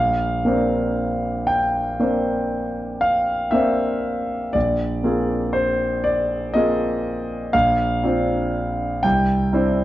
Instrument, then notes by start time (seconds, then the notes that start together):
grand piano
Already playing: A#1 F5
0.45 A#3 C4 D4 C5
1.47 G5
2.00 A#3 C4 D4 C5
3.01 F5
3.51 A#3 C4 D4 C5 E5
4.53 A#1 D5
5.04 A#3 C4 F4 G#4
5.53 C5
6.04 D5
6.54 A#3 C4 F4 G#4 D#5
7.53 A#1 F5
8.03 C4 D4 F4 C5
9.03 C2 G5
9.53 C4 D4 E4 C5